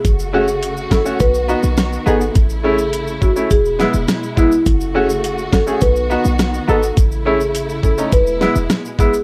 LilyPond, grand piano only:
\new Staff \with { instrumentName = "Grand piano" } { \time 4/4 \key fis \dorian \tempo 4 = 104 r8 <a cis' fis'>16 r8. <cis' e'>16 <a cis' fis'>16 r8 <b dis' fis'>16 r8. <b dis' gis'>16 r16 | r8 <a cis' e'>16 r8. <cis' e'>16 <a cis' e'>16 r8 <gis b e'>16 r8. <gis b e'>16 r16 | r8 <a cis' fis'>16 r8. <cis' fis'>16 <a cis' gis'>16 r8 <b dis' fis'>16 r8. <b dis' a'>16 r16 | r8 <a cis' e'>16 r8. <cis' e'>16 <a cis' dis'>16 r8 <gis b e'>16 r8. <gis b e'>16 r16 | }